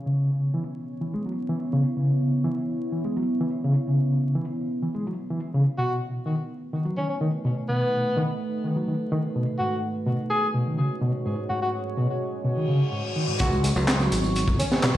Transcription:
0.00 5.74 B3 medium
0.00 5.74 E4 medium
0.00 5.74 C#5 medium
0.06 0.53 C#3 medium
0.54 0.63 E3 medium
1.02 1.13 E3 medium
1.14 1.25 G#3 medium
1.26 1.31 F#3 medium
1.49 1.58 E3 medium
1.73 1.82 C#3 medium
1.97 2.44 C#3 medium
2.45 2.54 E3 medium
2.92 3.03 E3 medium
3.04 3.16 G#3 medium
3.17 3.22 F#3 medium
3.40 3.49 E3 medium
3.64 3.73 C#3 loud
3.88 4.34 C#3 medium
4.35 4.44 E3 medium
4.82 4.94 E3 medium
4.95 5.06 G#3 medium
5.07 5.12 F#3 medium
5.30 5.39 E3 medium
5.54 5.63 C#3 medium
5.78 6.25 B2 medium
5.78 9.55 A3 medium
5.78 9.55 D#4 medium
5.78 5.95 F#4 medium
5.78 9.55 B4 medium
6.26 6.35 D#3 medium
6.73 6.84 D#3 medium
6.86 6.97 F#3 medium
6.97 7.03 D#3 medium
6.97 7.05 C#4 medium
7.09 7.17 C#4 medium
7.21 7.30 D#3 medium
7.45 7.54 B2 medium
7.69 8.15 B2 medium
7.69 8.35 B3 medium
8.17 8.25 D#3 medium
8.64 8.75 D#3 medium
8.76 8.87 F#3 medium
8.88 8.93 D#3 medium
9.12 9.21 D#3 medium
9.36 9.44 B2 medium
9.58 10.06 G#2 medium
9.58 13.36 G#3 medium
9.58 9.76 F#4 medium
9.58 13.36 F#4 medium
9.58 13.36 C#5 medium
10.07 10.16 B2 medium
10.30 10.48 G#4 medium
10.54 10.65 B2 medium
10.66 10.78 D#3 medium
10.78 10.83 C#3 medium
11.02 11.11 B2 medium
11.25 11.34 G#2 loud
11.49 11.96 G#2 medium
11.49 11.57 F#4 medium
11.62 11.69 F#4 medium
11.97 12.06 B2 medium
12.44 12.56 B2 medium
12.44 reverse cymbal medium
12.56 12.68 D#3 medium
12.68 12.79 C#3 medium
12.92 13.04 G#2 medium
13.16 13.25 D#3 medium
13.28 13.39 G#2 medium
13.40 13.72 C#2 medium
13.40 13.49 C#3 medium
13.40 14.97 B3 medium
13.40 14.97 E4 medium
13.40 13.57 F#4 medium
13.40 14.97 C#5 medium
13.40 kick loud
13.40 closed hi-hat loud
13.40 tambourine soft
13.52 tambourine soft
13.52 high conga medium
13.64 13.69 G#3 loud
13.64 closed hi-hat medium
13.64 ride medium
13.64 tambourine medium
13.76 14.08 C#2 loud
13.76 13.81 F#3 loud
13.76 tambourine soft
13.88 snare loud
13.88 clap loud
13.88 closed hi-hat medium
13.88 tambourine soft
13.88 high conga medium
14.00 14.46 F#3 loud
14.00 snare soft
14.00 tambourine soft
14.12 14.44 G#1 medium
14.12 closed hi-hat medium
14.12 ride medium
14.12 tambourine medium
14.23 tambourine soft
14.23 high conga medium
14.36 closed hi-hat medium
14.36 tambourine soft
14.48 14.57 C#2 medium
14.48 kick loud
14.48 tambourine soft
14.59 14.67 C#4 medium
14.59 closed hi-hat medium
14.59 ride medium
14.59 tambourine medium
14.59 high conga medium
14.59 low conga medium
14.72 14.83 B3 loud
14.72 14.79 C#4 medium
14.72 snare medium
14.72 tambourine soft
14.82 14.92 B2 loud
14.82 snare loud
14.82 clap loud
14.82 closed hi-hat medium
14.82 tambourine soft

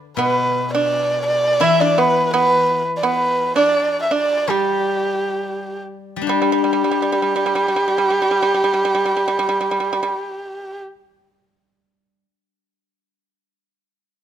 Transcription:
0.17 1.62 B2 soft
0.17 0.69 B3 medium
0.17 0.69 B4 medium
0.74 1.59 D4 medium
0.74 1.23 D5 medium
1.27 1.65 D5 medium
1.60 3.72 E3 soft
1.60 1.78 E4 medium
1.60 1.82 E5 medium
1.80 1.97 D4 medium
1.80 2.00 D5 medium
1.98 2.31 B3 medium
1.98 2.34 B4 medium
2.34 2.82 B3 medium
2.34 2.82 B4 medium
2.97 3.06 D5 medium
3.03 3.52 B3 medium
3.03 3.54 B4 medium
3.55 4.07 D4 medium
3.55 3.99 D5 medium
4.03 4.13 E5 medium
4.11 4.47 D4 medium
4.11 4.52 D5 medium
4.48 6.15 G3 soft
4.48 5.76 G3 soft
4.48 5.80 G4 medium
6.16 12.23 G3 soft
6.22 10.97 D4 soft
6.27 6.39 G3 medium
6.27 10.81 G4 soft
6.27 10.79 G4 medium
6.42 6.51 G3 medium
6.52 6.61 G3 medium
6.64 6.72 G3 soft
6.73 6.82 G3 soft
6.84 6.90 G3 soft
6.91 7.01 G3 soft
7.02 7.11 G3 soft
7.12 7.21 G3 medium
7.22 7.34 G3 soft
7.36 7.45 G3 medium
7.46 7.54 G3 soft
7.55 7.66 G3 soft
7.68 7.75 G3 soft
7.76 7.87 G3 soft
7.88 7.97 G3 soft
7.98 8.09 G3 soft
8.10 8.20 G3 soft
8.22 8.30 G3 soft
8.31 8.41 G3 soft
8.43 8.52 G3 soft
8.54 8.63 G3 soft
8.64 8.72 G3 soft
8.74 8.84 G3 soft
8.85 8.93 G3 soft
8.95 9.04 G3 soft
9.05 9.15 G3 soft
9.17 9.27 G3 soft
9.28 9.38 G3 soft
9.39 9.48 G3 soft
9.49 9.59 G3 medium
9.61 9.70 G3 soft
9.71 9.79 G3 soft
9.80 9.91 G3 soft
9.93 10.02 G3 medium
10.03 10.13 G3 soft

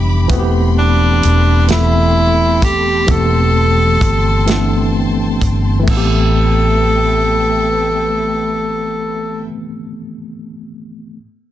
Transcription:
0.00 0.26 F1 medium
0.00 0.28 E3 medium
0.00 0.31 G3 medium
0.00 0.30 B3 medium
0.00 0.31 D4 medium
0.00 0.26 G4 medium
0.00 0.31 G4 loud
0.00 0.25 E5 medium
0.00 3.04 B5 medium
0.00 0.27 D6 medium
0.28 1.19 E1 loud
0.28 1.42 E3 loud
0.28 1.43 A3 medium
0.28 1.43 B3 loud
0.28 1.44 C4 loud
0.28 5.84 A4 medium
0.28 5.84 G5 medium
0.28 5.84 C6 medium
0.28 kick loud
0.28 closed hi-hat medium
0.33 0.38 F#4 medium
0.39 1.48 G4 loud
0.78 1.66 D4 loud
1.23 3.06 E1 medium
1.23 closed hi-hat medium
1.67 2.82 E3 medium
1.67 2.82 A3 medium
1.67 2.83 B3 medium
1.67 2.83 C4 medium
1.67 2.66 E4 loud
1.67 snare loud
1.67 closed hi-hat medium
1.72 2.84 A4 medium
2.62 3.12 G4 loud
2.62 kick medium
2.62 closed hi-hat medium
3.06 3.98 E1 loud
3.06 4.21 E3 medium
3.06 4.21 A3 medium
3.06 4.22 B3 medium
3.06 4.23 C4 medium
3.06 4.96 A4 loud
3.06 5.85 A5 medium
3.06 kick loud
3.06 closed hi-hat medium
3.11 4.23 G4 medium
4.01 5.37 G1 medium
4.01 kick loud
4.01 closed hi-hat medium
4.46 5.61 E3 medium
4.46 5.61 A3 medium
4.46 5.62 B3 medium
4.46 5.62 C4 medium
4.46 snare loud
4.46 closed hi-hat medium
4.51 5.63 D4 medium
5.41 5.84 G1 medium
5.41 kick medium
5.41 closed hi-hat medium
5.79 9.38 E3 medium
5.83 9.42 A3 medium
5.88 9.47 A1 medium
5.88 9.43 A3 medium
5.88 9.46 B3 medium
5.88 9.43 A4 medium
5.88 9.44 A4 medium
5.88 9.43 B4 medium
5.88 9.43 E5 medium
5.88 9.43 G5 medium
5.88 kick loud
5.88 crash medium
5.92 9.51 C4 medium
5.97 9.55 G4 medium

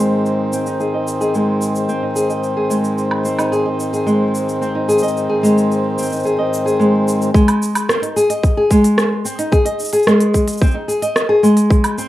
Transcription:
0.00 7.30 G#2 medium
0.00 7.30 D#3 medium
0.00 0.51 G#3 medium
0.00 7.31 C4 medium
0.26 shaker soft
0.53 0.66 C4 medium
0.53 shaker medium
0.66 0.79 D#4 medium
0.66 shaker soft
0.80 0.93 G#4 medium
0.80 shaker soft
0.94 1.20 D#5 medium
1.08 shaker medium
1.21 1.33 G#4 medium
1.21 shaker soft
1.35 1.88 G#3 medium
1.35 shaker soft
1.62 shaker medium
1.75 shaker soft
1.89 2.02 C4 medium
1.89 shaker soft
2.03 2.15 D#4 medium
2.16 2.29 G#4 medium
2.16 shaker medium
2.30 2.56 D#5 medium
2.30 shaker soft
2.44 shaker soft
2.57 2.69 G#4 medium
2.70 3.24 G#3 medium
2.70 shaker medium
2.84 shaker soft
2.98 shaker soft
3.11 low woodblock medium
3.25 3.38 C4 medium
3.25 shaker medium
3.38 3.51 D#4 medium
3.38 low woodblock medium
3.38 shaker soft
3.52 3.65 G#4 medium
3.52 shaker soft
3.66 3.92 D#5 medium
3.80 shaker medium
3.93 4.06 G#4 medium
3.93 shaker soft
4.06 4.60 G#3 medium
4.06 shaker soft
4.35 shaker medium
4.49 shaker soft
4.62 4.75 C4 medium
4.62 shaker soft
4.75 4.88 D#4 medium
4.89 5.02 G#4 medium
4.89 shaker medium
4.98 shaker medium
5.02 5.28 D#5 medium
5.02 shaker soft
5.08 shaker soft
5.17 shaker soft
5.29 5.42 G#4 medium
5.43 5.97 G#3 medium
5.43 shaker medium
5.58 shaker soft
5.72 shaker soft
5.98 6.11 C4 medium
5.98 shaker medium
6.02 shaker medium
6.06 shaker soft
6.09 6.24 D#4 medium
6.09 shaker soft
6.12 shaker soft
6.16 shaker soft
6.23 6.38 G#4 medium
6.23 shaker soft
6.26 shaker soft
6.39 6.65 D#5 medium
6.54 shaker medium
6.66 6.78 G#4 medium
6.66 shaker soft
6.79 7.33 G#3 medium
6.79 shaker soft
7.08 shaker medium
7.22 shaker soft
7.34 7.87 G#3 loud
7.34 kick loud
7.34 shaker soft
7.48 open hi-hat soft
7.48 low woodblock medium
7.63 shaker medium
7.75 open hi-hat medium
7.75 low woodblock medium
7.75 shaker soft
7.89 8.02 C4 medium
7.89 cross-stick loud
7.89 shaker soft
8.02 8.15 D#4 medium
8.02 open hi-hat soft
8.16 8.29 G#4 loud
8.16 shaker medium
8.30 8.56 D#5 medium
8.30 open hi-hat medium
8.30 shaker soft
8.43 kick loud
8.43 shaker soft
8.57 8.70 G#4 medium
8.71 9.24 G#3 loud
8.71 kick medium
8.71 shaker medium
8.84 open hi-hat medium
8.84 shaker soft
8.98 cross-stick loud
8.98 shaker soft
9.25 9.38 C4 medium
9.25 shaker medium
9.39 9.51 D#4 medium
9.39 open hi-hat medium
9.39 shaker soft
9.52 9.65 G#4 loud
9.52 kick loud
9.52 shaker soft
9.65 9.92 D#5 medium
9.65 open hi-hat soft
9.80 shaker medium
9.84 shaker medium
9.89 shaker soft
9.93 10.06 G#4 loud
9.93 open hi-hat medium
9.93 shaker soft
9.98 shaker soft
10.03 10.60 G#3 loud
10.03 shaker soft
10.07 cross-stick loud
10.07 shaker soft
10.20 open hi-hat soft
10.34 kick medium
10.34 shaker medium
10.48 open hi-hat medium
10.48 shaker soft
10.53 shaker soft
10.57 10.74 C4 medium
10.57 shaker soft
10.62 kick loud
10.62 shaker soft
10.66 shaker soft
10.71 10.87 D#4 medium
10.71 shaker soft
10.88 11.02 G#4 medium
10.88 shaker medium
11.02 11.28 D#5 medium
11.02 open hi-hat medium
11.02 shaker soft
11.16 cross-stick loud
11.16 shaker soft
11.29 11.42 G#4 medium
11.43 11.96 G#3 loud
11.43 shaker medium
11.57 open hi-hat medium
11.57 shaker soft
11.71 kick loud
11.71 shaker soft
11.84 open hi-hat soft
11.84 low woodblock medium
11.98 12.08 C4 medium
11.98 shaker medium

